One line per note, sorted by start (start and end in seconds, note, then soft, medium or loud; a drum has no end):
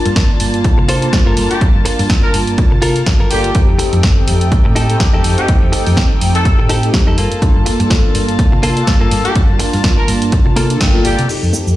0.00 0.99 A#3 medium
0.00 3.51 A#3 medium
0.00 0.99 D4 medium
0.00 0.99 F4 medium
0.00 3.51 F4 medium
0.00 0.99 A5 medium
0.00 3.51 A5 medium
0.05 0.13 G2 medium
0.05 muted clean electric guitar stroke soft
0.05 closed hi-hat medium
0.16 kick loud
0.16 snare loud
0.16 closed hi-hat medium
0.40 0.72 G2 medium
0.40 open hi-hat loud
0.54 closed hi-hat soft
0.64 kick loud
0.64 closed hi-hat medium
0.78 1.08 C3 medium
0.78 muted clean electric guitar stroke medium
0.88 1.08 F4 loud
0.88 1.08 A4 medium
0.88 1.08 C5 loud
0.88 open hi-hat loud
1.01 1.58 A#3 medium
1.01 1.59 D4 medium
1.01 1.59 F4 medium
1.01 1.59 A5 loud
1.01 closed hi-hat medium
1.13 kick loud
1.13 snare loud
1.13 closed hi-hat medium
1.26 1.34 G2 medium
1.26 1.56 F4 medium
1.26 1.56 A4 medium
1.26 1.56 A#4 medium
1.37 1.47 G2 medium
1.37 open hi-hat loud
1.51 1.61 G4 medium
1.51 closed hi-hat soft
1.60 2.92 A#3 medium
1.60 2.93 D4 medium
1.60 2.93 F4 medium
1.60 2.93 A5 medium
1.60 muted fingered electric bass stroke soft
1.60 kick loud
1.60 closed hi-hat medium
1.75 1.82 G2 medium
1.85 muted clean electric guitar stroke loud
1.85 open hi-hat loud
1.99 2.07 G2 medium
1.99 muted clean electric guitar stroke soft
1.99 open hi-hat medium
2.10 kick loud
2.10 snare loud
2.10 closed hi-hat medium
2.23 2.33 A#4 medium
2.34 2.65 G2 medium
2.34 open hi-hat loud
2.47 closed hi-hat soft
2.58 kick loud
2.58 closed hi-hat medium
2.71 3.02 C3 medium
2.71 muted clean electric guitar stroke medium
2.82 3.01 F4 loud
2.82 3.01 A4 loud
2.82 3.02 A#4 loud
2.82 open hi-hat loud
2.96 closed hi-hat soft
3.06 kick loud
3.06 snare loud
3.06 closed hi-hat medium
3.20 3.50 G1 loud
3.20 3.49 F4 medium
3.20 3.50 A4 medium
3.20 3.50 A#4 medium
3.30 3.52 A#3 medium
3.30 3.52 D4 medium
3.30 3.52 F4 medium
3.30 3.60 G4 medium
3.30 3.52 A4 medium
3.30 open hi-hat loud
3.44 closed hi-hat soft
3.54 4.86 A3 medium
3.54 4.86 C4 medium
3.54 4.86 D#4 medium
3.54 7.15 D#4 medium
3.54 4.87 G4 loud
3.54 7.14 A4 medium
3.54 7.14 G5 medium
3.54 kick loud
3.54 closed hi-hat medium
3.69 3.76 F2 loud
3.79 muted clean electric guitar stroke loud
3.79 open hi-hat loud
3.92 4.00 F2 medium
3.92 muted clean electric guitar stroke soft
3.92 closed hi-hat soft
4.03 kick loud
4.03 snare loud
4.03 closed hi-hat medium
4.28 4.59 F2 medium
4.28 open hi-hat loud
4.41 closed hi-hat soft
4.52 kick loud
4.52 closed hi-hat medium
4.65 4.95 A2 medium
4.65 muted clean electric guitar stroke medium
4.75 4.95 D#4 loud
4.75 4.95 G4 medium
4.75 4.95 A4 loud
4.75 open hi-hat loud
4.89 5.46 A3 medium
4.89 5.46 C4 medium
4.89 5.46 D#4 medium
4.89 5.47 G4 loud
4.89 closed hi-hat soft
5.00 kick loud
5.00 snare loud
5.00 closed hi-hat medium
5.13 5.21 F2 medium
5.13 5.43 D#4 medium
5.13 5.43 G4 medium
5.13 5.44 A4 loud
5.24 5.34 F2 medium
5.24 open hi-hat loud
5.38 5.48 G4 medium
5.38 closed hi-hat soft
5.48 6.80 A3 medium
5.48 6.80 C4 medium
5.48 6.80 G4 medium
5.48 muted fingered electric bass stroke soft
5.48 kick loud
5.48 closed hi-hat medium
5.62 5.70 F2 medium
5.72 muted clean electric guitar stroke loud
5.72 open hi-hat loud
5.86 5.94 F2 loud
5.86 muted clean electric guitar stroke soft
5.86 open hi-hat medium
5.97 kick loud
5.97 snare loud
5.97 closed hi-hat medium
6.21 6.53 F2 medium
6.21 open hi-hat loud
6.35 6.70 A4 medium
6.35 closed hi-hat soft
6.45 kick loud
6.45 closed hi-hat medium
6.59 6.89 A2 medium
6.59 muted clean electric guitar stroke medium
6.69 6.88 D#4 loud
6.69 6.89 G4 loud
6.69 6.89 A4 loud
6.69 open hi-hat loud
6.82 7.16 A3 medium
6.82 7.16 C4 medium
6.82 7.17 D#4 medium
6.82 7.17 G4 loud
6.82 closed hi-hat medium
6.94 kick loud
6.94 snare loud
6.94 closed hi-hat medium
7.07 7.15 F2 medium
7.07 7.17 D#4 medium
7.07 7.18 G4 medium
7.07 7.17 A4 medium
7.18 7.28 G2 medium
7.18 7.58 A#3 medium
7.18 11.25 A#3 medium
7.18 7.58 F4 medium
7.18 11.25 F4 medium
7.18 7.58 A4 medium
7.18 11.25 A5 medium
7.18 open hi-hat loud
7.32 closed hi-hat medium
7.41 8.73 A#3 medium
7.41 8.73 D4 medium
7.41 8.74 F4 medium
7.41 8.74 A4 medium
7.41 muted fingered electric bass stroke soft
7.41 kick loud
7.41 closed hi-hat medium
7.56 7.63 G2 medium
7.66 muted clean electric guitar stroke loud
7.66 open hi-hat loud
7.80 7.87 G2 medium
7.80 muted clean electric guitar stroke soft
7.80 closed hi-hat medium
7.90 kick loud
7.90 snare loud
7.90 closed hi-hat medium
8.15 8.46 G2 medium
8.15 open hi-hat loud
8.29 closed hi-hat medium
8.39 kick loud
8.39 closed hi-hat medium
8.52 8.82 C3 medium
8.52 muted clean electric guitar stroke medium
8.63 8.82 A#3 loud
8.63 8.82 F4 loud
8.63 8.82 A4 loud
8.63 open hi-hat loud
8.76 9.33 A#3 medium
8.76 9.33 D4 medium
8.76 9.33 F4 medium
8.76 9.34 A4 loud
8.76 closed hi-hat medium
8.87 kick loud
8.87 snare loud
8.87 closed hi-hat medium
9.00 9.08 G2 medium
9.00 9.30 A#3 medium
9.00 9.30 F4 medium
9.00 9.31 A4 loud
9.11 9.21 G2 medium
9.11 open hi-hat loud
9.25 9.35 G4 medium
9.25 closed hi-hat medium
9.35 10.67 A#3 medium
9.35 10.67 D4 medium
9.35 10.67 F4 medium
9.35 10.68 A5 medium
9.35 muted fingered electric bass stroke soft
9.35 kick loud
9.35 closed hi-hat medium
9.49 9.57 G2 loud
9.59 muted clean electric guitar stroke loud
9.59 open hi-hat loud
9.73 9.81 G2 loud
9.73 muted clean electric guitar stroke soft
9.73 open hi-hat medium
9.84 kick loud
9.84 snare loud
9.84 closed hi-hat medium
9.98 10.08 A#4 medium
10.08 10.40 G2 medium
10.08 open hi-hat loud
10.22 closed hi-hat medium
10.32 kick loud
10.32 closed hi-hat medium
10.46 10.76 C3 medium
10.46 muted clean electric guitar stroke medium
10.56 10.75 A#3 loud
10.56 10.76 F4 loud
10.56 10.76 A4 loud
10.56 10.79 A5 medium
10.56 open hi-hat loud
10.69 11.26 A#3 medium
10.69 11.26 D4 medium
10.69 11.27 F4 medium
10.69 11.27 A4 loud
10.69 closed hi-hat medium
10.81 10.91 G2 loud
10.81 11.03 G5 medium
10.81 kick loud
10.81 snare loud
10.81 closed hi-hat medium
10.94 11.24 A#3 medium
10.94 11.24 F4 medium
10.94 11.24 A4 medium
11.05 11.15 G1 loud
11.05 11.29 G4 medium
11.05 11.28 D5 medium
11.05 open hi-hat loud
11.19 11.26 C3 medium
11.19 closed hi-hat medium
11.28 11.76 C4 medium
11.28 11.76 D#4 medium
11.28 11.76 G4 medium
11.28 11.76 A4 medium
11.28 11.76 G5 medium
11.28 muted fingered electric bass stroke soft
11.28 crash medium
11.28 shaker soft
11.43 11.50 F2 medium
11.43 shaker soft
11.53 11.72 A3 loud
11.53 11.72 D#4 medium
11.53 11.73 G4 loud
11.53 shaker medium
11.67 11.74 F2 medium
11.67 shaker soft